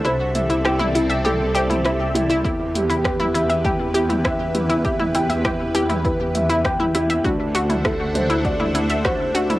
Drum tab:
HH |x-xxx-xxx-xxx-xx|x-xxx-xxx-xxx-xx|x-xxx-xxx-xxx-xx|x-xxx-xxx-xxx-xx|
SD |----r-------r---|----r-------r---|----r-------r---|----r-------r---|
T2 |--o--o--o--o--o-|--o--o--o--o--o-|-o--o--o--o--o--|o--o--o--o--o--o|
BD |----------------|o---o---o---o---|o---o---o---o---|o---o---o---o---|